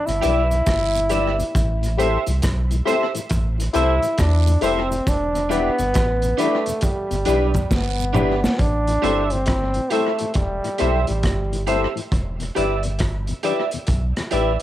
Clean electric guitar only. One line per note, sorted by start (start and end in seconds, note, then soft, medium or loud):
0.21 0.46 G4 medium
0.21 0.47 D5 medium
0.21 0.47 E5 medium
1.10 1.35 G4 medium
1.10 1.35 D5 medium
1.10 1.35 E5 loud
1.99 2.23 G4 medium
1.99 2.23 C5 loud
1.99 2.24 E5 medium
2.86 3.11 G4 medium
2.86 3.11 C5 medium
2.86 3.11 E5 medium
3.74 3.99 G4 medium
3.74 4.00 C5 medium
3.74 4.00 E5 loud
4.62 4.87 G4 medium
4.62 4.88 C5 loud
4.62 4.88 E5 medium
5.49 5.75 D4 medium
5.49 5.75 G4 medium
5.49 5.76 B4 loud
6.37 6.63 D4 medium
6.37 6.63 G4 medium
6.37 6.63 B4 loud
7.26 7.51 D4 medium
7.26 7.51 G4 medium
7.26 7.52 B4 medium
8.13 8.39 D4 medium
8.13 8.39 G4 loud
8.13 8.39 B4 medium
9.02 9.27 G4 medium
9.02 9.27 C5 medium
9.02 9.28 E5 loud
9.90 10.15 G4 medium
9.90 10.16 C5 medium
9.90 10.16 E5 medium
10.79 11.04 G4 medium
10.79 11.04 C5 medium
10.79 11.05 E5 loud
11.67 11.92 G4 medium
11.67 11.92 C5 medium
11.67 11.93 E5 medium
12.55 12.80 G4 medium
12.55 12.81 D5 medium
12.55 12.81 E5 medium
13.43 13.68 G4 medium
13.43 13.69 D5 medium
13.43 13.69 E5 medium
14.31 14.56 G4 medium
14.31 14.56 D5 medium
14.31 14.57 E5 medium